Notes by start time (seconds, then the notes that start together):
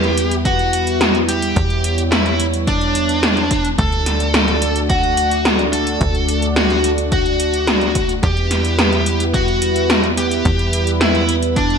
Already playing: E2 G3 B3 E4 G4 B4
0.04 closed hi-hat
0.17 closed hi-hat
0.31 closed hi-hat
0.45 F#4, kick, closed hi-hat
0.59 closed hi-hat
0.73 closed hi-hat
0.87 closed hi-hat
1.01 snare, closed hi-hat
1.15 closed hi-hat
1.28 G4, closed hi-hat
1.42 closed hi-hat
1.56 E2 C#5, kick, closed hi-hat
1.70 closed hi-hat
1.84 closed hi-hat
1.98 closed hi-hat
2.12 E4, snare, closed hi-hat
2.26 closed hi-hat
2.40 closed hi-hat
2.54 closed hi-hat
2.67 D4, kick, closed hi-hat
2.81 closed hi-hat
2.95 closed hi-hat
3.09 closed hi-hat
3.23 snare, closed hi-hat
3.37 closed hi-hat
3.51 kick, closed hi-hat
3.65 closed hi-hat
3.78 D2 A3 D4 F#4 A4 D5, kick, closed hi-hat
3.92 closed hi-hat
4.06 snare, closed hi-hat
4.20 closed hi-hat
4.34 snare, closed hi-hat
4.48 closed hi-hat
4.62 closed hi-hat
4.76 closed hi-hat
4.90 F#4, kick, closed hi-hat
5.04 closed hi-hat
5.17 closed hi-hat
5.31 closed hi-hat
5.45 snare, closed hi-hat
5.59 closed hi-hat
5.73 A4, closed hi-hat
5.87 closed hi-hat
6.01 D2, kick, closed hi-hat
6.15 closed hi-hat
6.29 closed hi-hat
6.42 closed hi-hat
6.56 F#4, snare, closed hi-hat
6.70 closed hi-hat
6.84 closed hi-hat
6.98 closed hi-hat
7.12 F#4, kick, closed hi-hat
7.26 closed hi-hat
7.40 closed hi-hat
7.54 closed hi-hat
7.67 snare, closed hi-hat
7.81 closed hi-hat
7.95 kick, closed hi-hat
8.09 closed hi-hat
8.23 E2 G3 B3 E4 G4 B4, kick, closed hi-hat
8.37 closed hi-hat
8.51 snare, closed hi-hat
8.65 closed hi-hat
8.79 snare, closed hi-hat
8.93 closed hi-hat
9.06 closed hi-hat
9.20 closed hi-hat
9.34 F#4, kick, closed hi-hat
9.48 closed hi-hat
9.62 closed hi-hat
9.76 closed hi-hat
9.90 snare, closed hi-hat
10.04 closed hi-hat
10.17 G4, closed hi-hat
10.31 closed hi-hat
10.45 E2, kick, closed hi-hat
10.59 closed hi-hat
10.73 closed hi-hat
10.87 closed hi-hat
11.01 E4, snare, closed hi-hat
11.15 closed hi-hat
11.29 closed hi-hat
11.43 closed hi-hat
11.56 D4, kick, closed hi-hat
11.70 closed hi-hat